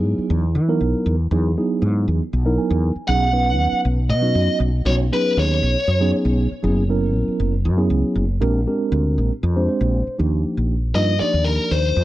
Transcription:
0.00 0.44 F#3 medium
0.00 0.44 B3 medium
0.00 0.44 D#4 medium
0.00 0.44 E4 medium
0.00 0.44 G#4 medium
0.05 0.17 G#2 medium
0.18 muted fretless electric bass stroke soft
0.30 0.56 E2 medium
0.55 0.79 E3 medium
0.68 1.14 F#3 medium
0.68 1.14 B3 medium
0.68 1.14 D#4 medium
0.68 1.15 E4 medium
0.68 1.15 A#4 loud
0.81 0.93 B1 medium
1.06 1.30 E2 medium
1.31 1.55 E2 medium
1.31 1.50 F#3 medium
1.31 1.50 B3 medium
1.31 1.50 D#4 medium
1.31 1.50 E4 medium
1.31 1.51 G#4 loud
1.57 2.21 F#3 medium
1.57 2.21 B3 medium
1.57 2.22 D#4 medium
1.57 2.22 E4 medium
1.57 2.22 G#4 medium
1.82 2.06 G#2 medium
2.08 2.20 E2 medium
2.33 2.57 B1 medium
2.45 2.91 F#3 medium
2.45 2.91 B3 medium
2.45 2.91 D#4 medium
2.45 2.91 E4 medium
2.45 2.92 A#4 loud
2.58 3.05 G#5 medium
2.70 2.94 E2 medium
2.96 muted fretless electric bass stroke soft
3.08 3.58 B1 loud
3.08 3.27 F#3 medium
3.08 3.27 B3 medium
3.08 3.27 C#4 medium
3.08 3.27 D#4 medium
3.08 3.27 G#4 medium
3.08 3.80 F#5 loud
3.32 3.98 F#3 medium
3.32 3.98 B3 medium
3.32 3.98 C#4 medium
3.32 3.98 D#4 medium
3.32 3.98 B4 medium
3.58 3.71 D#2 medium
3.72 muted fretless electric bass stroke soft
3.85 4.11 B1 medium
4.09 4.33 B2 medium
4.09 4.57 D#5 loud
4.21 4.68 F#3 medium
4.21 4.68 B3 medium
4.21 4.69 C#4 medium
4.21 4.69 D#4 medium
4.21 4.69 F#4 medium
4.35 4.47 F#2 medium
4.60 4.84 B1 medium
4.85 5.09 B1 medium
4.85 5.04 F#3 medium
4.85 5.04 B3 medium
4.85 5.04 C#4 medium
4.85 5.04 D#4 medium
4.85 5.05 F#4 medium
4.85 4.93 C#5 loud
5.12 5.76 F#3 medium
5.12 5.76 B3 medium
5.12 5.76 C#4 medium
5.12 5.76 D#4 medium
5.12 5.76 G#4 medium
5.12 5.36 B4 medium
5.37 5.61 D#2 medium
5.37 6.10 C#5 medium
5.63 5.74 B1 medium
5.87 6.11 F#2 medium
6.00 6.46 F#3 medium
6.00 6.46 B3 medium
6.00 6.46 C#4 medium
6.00 6.47 D#4 medium
6.00 6.47 G#4 loud
6.25 6.49 B1 medium
6.51 muted fretless electric bass stroke soft
6.63 7.15 F#1 medium
6.63 6.82 F#3 medium
6.63 6.82 B3 medium
6.63 6.82 C#4 medium
6.63 6.82 E4 medium
6.63 6.82 G#4 loud
6.89 7.53 F#3 medium
6.89 7.54 B3 medium
6.89 7.54 C#4 medium
6.89 7.54 E4 medium
6.89 7.54 A#4 loud
7.15 7.26 A#1 medium
7.28 muted fretless electric bass stroke soft
7.40 7.67 F#1 medium
7.65 7.89 F#2 medium
7.77 8.23 F#3 loud
7.77 8.24 B3 medium
7.77 8.24 C#4 medium
7.77 8.24 E4 medium
7.77 8.24 G#4 loud
7.90 8.02 C#2 medium
8.15 8.39 F#1 medium
8.41 8.65 A#1 loud
8.41 8.59 G#3 medium
8.41 8.60 C4 medium
8.41 8.60 D4 medium
8.41 8.60 G4 medium
8.41 8.60 A#4 loud
8.67 9.31 G#3 medium
8.67 9.31 C4 medium
8.67 9.31 D4 medium
8.67 9.31 G4 medium
8.67 9.31 A#4 medium
8.92 9.16 D2 medium
9.18 9.30 A#1 medium
9.43 9.67 F2 medium
9.56 10.02 G#3 medium
9.56 10.02 C4 medium
9.56 10.02 D4 medium
9.56 10.02 G4 medium
9.56 9.68 C5 loud
9.69 10.16 C5 medium
9.81 10.04 A#1 medium
10.07 muted fretless electric bass stroke soft
10.18 10.43 D#2 medium
10.18 10.74 F3 medium
10.18 10.74 A#3 medium
10.18 10.74 D4 medium
10.18 10.74 D#4 medium
10.18 10.74 G4 medium
10.57 10.93 A#1 medium
10.95 11.19 G2 medium
10.95 11.13 F3 medium
10.95 11.13 A#3 medium
10.95 11.13 D4 medium
10.95 11.14 D#4 medium
10.95 11.14 F4 medium
10.95 11.20 D#5 medium
11.20 11.94 F3 medium
11.20 11.94 A#3 medium
11.20 11.94 D4 medium
11.20 11.95 D#4 medium
11.20 11.94 G4 medium
11.20 11.45 D5 medium
11.20 muted fretless electric bass stroke soft
11.34 11.57 D#2 medium
11.44 11.70 A#4 medium
11.71 11.95 D#2 medium
11.71 12.04 C5 medium
11.96 12.04 F2 medium

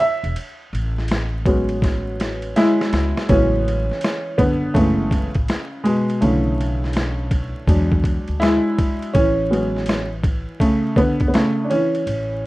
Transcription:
0.00 0.34 E5 loud
0.00 ride medium
0.23 0.34 E1 medium
0.23 ride soft
0.36 ride medium
0.73 2.52 A1 loud
0.73 ride medium
0.98 snare soft
1.08 snare loud
1.08 hi-hat pedal medium
1.08 ride medium
1.46 3.25 F#3 medium
1.46 2.55 G#3 medium
1.46 3.25 B3 medium
1.46 3.25 C#4 medium
1.46 kick loud
1.46 ride medium
1.69 ride soft
1.82 kick loud
1.82 snare medium
1.82 ride medium
2.20 snare medium
2.20 ride medium
2.42 ride soft
2.56 3.26 G#3 medium
2.56 3.31 E4 loud
2.56 snare medium
2.56 hi-hat pedal medium
2.56 ride medium
2.81 snare medium
2.92 3.12 C#2 medium
2.92 snare loud
2.92 ride medium
3.17 snare medium
3.29 3.89 A1 loud
3.29 3.82 C#3 medium
3.29 4.36 E3 medium
3.29 3.82 F#3 soft
3.29 3.82 G#3 soft
3.29 3.82 B3 medium
3.29 4.42 C#4 medium
3.29 kick loud
3.29 ride medium
3.68 ride medium
3.91 snare soft
4.01 snare loud
4.01 hi-hat pedal medium
4.01 ride medium
4.38 4.68 F#1 medium
4.38 4.73 D3 medium
4.38 4.74 B3 medium
4.38 kick medium
4.38 ride medium
4.74 5.24 F#1 loud
4.74 5.82 C#3 medium
4.74 5.28 E3 medium
4.74 5.28 G#3 soft
4.74 5.28 A3 medium
4.74 5.28 B3 medium
4.74 kick medium
4.74 ride medium
5.11 kick medium
5.11 ride medium
5.35 5.46 A1 medium
5.35 kick medium
5.35 ride soft
5.48 snare loud
5.48 hi-hat pedal medium
5.48 ride medium
5.84 6.20 B2 medium
5.84 6.22 G#3 medium
5.84 ride medium
6.10 ride soft
6.21 7.51 B1 loud
6.21 7.28 C#3 medium
6.21 7.64 D3 medium
6.21 7.64 E3 soft
6.21 7.64 A3 medium
6.21 7.65 C#4 medium
6.21 ride medium
6.61 ride medium
6.84 snare soft
6.93 snare loud
6.93 hi-hat pedal soft
6.93 ride medium
7.31 kick medium
7.31 ride medium
7.67 8.17 E2 loud
7.67 9.10 F#3 medium
7.67 8.40 G#3 soft
7.67 9.11 D4 medium
7.67 kick medium
7.67 ride medium
7.92 kick medium
8.04 kick medium
8.04 ride medium
8.28 8.58 D2 medium
8.28 ride soft
8.40 9.11 G#3 medium
8.40 9.10 E4 loud
8.40 snare loud
8.40 hi-hat pedal medium
8.40 ride medium
8.79 kick medium
8.79 ride medium
9.02 ride soft
9.13 10.44 A1 loud
9.13 10.57 E3 medium
9.13 9.50 C#4 medium
9.13 kick loud
9.13 ride medium
9.50 10.03 F#3 medium
9.50 10.04 G#3 soft
9.50 10.04 B3 soft
9.50 10.04 C#4 medium
9.50 ride medium
9.76 snare soft
9.86 snare loud
9.86 hi-hat pedal medium
9.86 ride medium
10.24 kick loud
10.24 ride medium
10.60 10.95 C#3 medium
10.60 10.98 A3 medium
10.60 kick medium
10.60 ride medium
10.96 11.27 D3 medium
10.96 11.27 B3 medium
10.96 kick medium
10.96 ride medium
11.20 11.31 F#1 medium
11.20 kick medium
11.20 ride soft
11.28 11.34 B3 medium
11.34 11.64 C#3 medium
11.34 11.67 A3 medium
11.34 snare loud
11.34 hi-hat pedal medium
11.34 ride medium
11.64 11.70 D4 medium
11.70 12.46 E3 medium
11.70 12.46 C#4 medium
11.70 ride medium
11.95 ride soft
12.07 12.46 A1 loud
12.07 ride medium

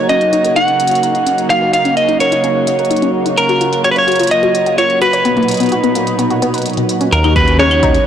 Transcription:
0.00 5.21 C#3 medium
0.00 3.34 F#3 medium
0.00 5.21 A#3 medium
0.00 3.34 D#4 medium
0.00 7.09 F#4 medium
0.09 0.15 C#4 medium
0.09 0.56 D#5 medium
0.09 closed hi-hat soft
0.21 closed hi-hat soft
0.33 0.42 D#4 medium
0.33 closed hi-hat medium
0.45 0.54 A#4 medium
0.45 closed hi-hat soft
0.56 0.65 D#4 medium
0.56 1.46 F#5 loud
0.56 closed hi-hat soft
0.68 0.74 C#4 medium
0.68 closed hi-hat soft
0.80 closed hi-hat medium
0.88 closed hi-hat medium
0.91 1.01 D#4 medium
0.91 closed hi-hat soft
0.95 closed hi-hat medium
1.03 1.12 A#4 medium
1.03 closed hi-hat soft
1.15 1.24 D#4 medium
1.15 closed hi-hat soft
1.27 1.32 C#4 medium
1.27 closed hi-hat medium
1.38 closed hi-hat soft
1.50 1.59 D#4 medium
1.50 1.72 F5 loud
1.50 closed hi-hat soft
1.62 1.71 A#4 medium
1.73 1.83 D#4 medium
1.73 1.95 F5 medium
1.73 closed hi-hat medium
1.85 1.91 C#4 medium
1.85 closed hi-hat soft
1.97 2.20 D#5 medium
1.97 closed hi-hat soft
2.09 2.18 D#4 medium
2.09 closed hi-hat soft
2.20 2.30 A#4 medium
2.20 3.10 C#5 medium
2.20 closed hi-hat medium
2.32 2.41 D#4 medium
2.32 closed hi-hat medium
2.44 2.49 C#4 medium
2.44 closed hi-hat soft
2.67 2.76 D#4 medium
2.67 closed hi-hat medium
2.79 2.88 A#4 medium
2.79 closed hi-hat soft
2.85 closed hi-hat soft
2.91 3.00 D#4 medium
2.91 closed hi-hat soft
2.97 closed hi-hat soft
3.02 3.08 C#4 medium
3.02 closed hi-hat soft
3.26 3.35 D#4 medium
3.26 closed hi-hat soft
3.37 7.09 F#3 medium
3.37 5.23 F4 medium
3.37 3.81 A#4 loud
3.37 3.47 C#5 medium
3.37 closed hi-hat soft
3.49 3.58 F#4 medium
3.49 closed hi-hat soft
3.61 3.67 F4 medium
3.61 closed hi-hat medium
3.73 closed hi-hat soft
3.84 3.94 F#4 medium
3.84 3.91 C#5 medium
3.84 closed hi-hat soft
3.91 3.98 B4 medium
3.96 4.05 C#5 medium
3.96 4.29 C#5 medium
3.96 closed hi-hat soft
4.08 4.17 F#4 medium
4.08 closed hi-hat soft
4.12 closed hi-hat soft
4.16 closed hi-hat medium
4.20 4.25 F4 medium
4.20 closed hi-hat medium
4.23 closed hi-hat medium
4.27 closed hi-hat medium
4.31 4.78 D#5 loud
4.31 closed hi-hat medium
4.43 4.52 F#4 medium
4.43 closed hi-hat soft
4.55 4.64 C#5 medium
4.55 closed hi-hat medium
4.66 4.76 F#4 medium
4.66 closed hi-hat medium
4.78 4.84 F4 medium
4.78 5.01 C#5 loud
4.78 closed hi-hat soft
4.90 closed hi-hat soft
5.02 5.11 F#4 medium
5.02 6.62 B4 medium
5.02 closed hi-hat medium
5.13 5.23 C#5 medium
5.13 closed hi-hat soft
5.25 7.11 A#2 medium
5.25 7.11 B2 medium
5.25 5.34 B3 medium
5.25 7.11 D#4 medium
5.25 closed hi-hat medium
5.37 5.42 A#3 medium
5.37 closed hi-hat soft
5.43 closed hi-hat soft
5.48 closed hi-hat medium
5.51 closed hi-hat medium
5.54 closed hi-hat medium
5.57 closed hi-hat soft
5.60 5.69 B3 medium
5.60 closed hi-hat medium
5.63 closed hi-hat soft
5.66 closed hi-hat soft
5.69 closed hi-hat soft
5.72 5.81 F#4 medium
5.72 closed hi-hat soft
5.84 5.93 B3 medium
5.84 closed hi-hat soft
5.95 6.01 A#3 medium
5.95 closed hi-hat medium
6.07 closed hi-hat medium
6.19 6.28 B3 medium
6.19 closed hi-hat soft
6.31 6.40 F#4 medium
6.31 closed hi-hat soft
6.42 6.48 B3 loud
6.42 closed hi-hat medium
6.54 6.63 B4 medium
6.54 closed hi-hat soft
6.58 closed hi-hat soft
6.62 closed hi-hat soft
6.66 closed hi-hat soft
6.70 closed hi-hat soft
6.73 closed hi-hat soft
6.77 6.83 B2 medium
6.77 closed hi-hat soft
6.89 closed hi-hat medium
7.01 7.06 C#4 medium
7.01 closed hi-hat soft
7.13 8.00 D#2 loud
7.13 8.07 C#3 medium
7.13 8.07 F#3 medium
7.13 8.07 C#4 medium
7.13 8.07 D#4 medium
7.13 8.07 F#4 medium
7.13 7.34 A#4 loud
7.13 closed hi-hat medium
7.24 7.33 D#4 medium
7.24 closed hi-hat soft
7.24 claves medium
7.36 7.59 B4 loud
7.36 kick loud
7.36 closed hi-hat loud
7.48 closed hi-hat medium
7.59 7.69 C#4 loud
7.59 8.06 C#5 loud
7.59 cross-stick loud
7.59 closed hi-hat medium
7.71 closed hi-hat soft
7.71 claves medium
7.83 7.92 D#4 medium
7.83 kick loud
7.83 closed hi-hat loud
7.95 closed hi-hat medium

